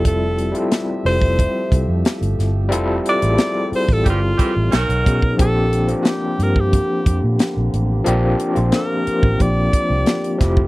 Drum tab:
HH |x-xxx-o-x-x-xxx-|x-xxx-o-x-x-xxx-|x-xxx-x-x-x-x-x-|x-xxx-x-x-x-xxx-|
SD |----o-------o-o-|----o-------o---|----o-------o---|----o-------o-o-|
BD |o------oo-o-----|-------oo-o---oo|o------oo-o-----|-------oo-o---oo|